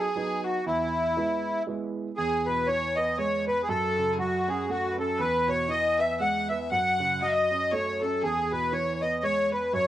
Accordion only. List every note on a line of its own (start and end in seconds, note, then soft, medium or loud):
0.00 0.41 G#4 medium
0.45 0.65 F#4 medium
0.66 1.63 E4 medium
2.17 2.47 G#4 loud
2.46 2.68 B4 medium
2.67 2.97 C#5 loud
2.96 3.18 D#5 medium
3.18 3.45 C#5 medium
3.48 3.62 B4 medium
3.63 3.68 G#4 medium
3.69 4.15 A4 loud
4.19 4.49 F#4 medium
4.48 4.70 G#4 medium
4.70 4.96 F#4 medium
4.99 5.21 A4 medium
5.20 5.50 B4 loud
5.49 5.71 C#5 loud
5.70 6.00 D#5 loud
6.00 6.21 E5 loud
6.21 6.48 F#5 loud
6.50 6.59 E5 medium
6.72 7.23 F#5 loud
7.22 7.73 D#5 loud
7.73 8.02 C#5 medium
8.02 8.23 A4 medium
8.23 8.52 G#4 loud
8.52 8.73 B4 medium
8.73 8.93 C#5 medium
8.95 9.02 C#5 medium
9.02 9.24 D#5 medium
9.24 9.50 C#5 loud
9.53 9.72 B4 medium
9.74 9.87 C#5 loud